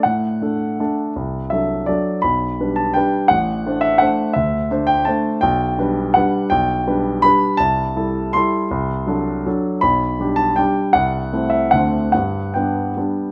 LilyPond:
\new Staff \with { instrumentName = "Grand piano" } { \time 3/4 \key g \major \tempo 4 = 164 << { fis''2~ fis''8 r8 | r4 e''4 d''4 | b''4. a''8 g''4 | fis''4. e''8 fis''4 |
e''4. g''8 a''4 | g''2 fis''4 | g''2 b''4 | a''2 c'''4~ |
c'''4. r4. | b''4. a''8 g''4 | fis''4. e''8 fis''4 | fis''4 g''2 | } \\ { a,4 <a d' a'>4 <a d' a'>4 | c,4 <fis d' a'>4 <fis d' a'>4 | b,,4 <g d' b'>4 <g d' b'>4 | a,,4 <a d' c''>4 <a d' c''>4 |
d,4 <a d' c''>4 <a d' c''>4 | b,,4 <g d' b'>4 <g d' b'>4 | b,,4 <g d' b'>4 <g d' b'>4 | c,4 <g e' a'>4 <g e' a'>4 |
c,4 <fis d' a'>4 <fis d' a'>4 | b,,4 <g d' g'>4 <g d' g'>4 | c,4 <a c' e'>4 <d, a c' d'>4 | g,4 <g b d'>4 <g b d'>4 | } >> }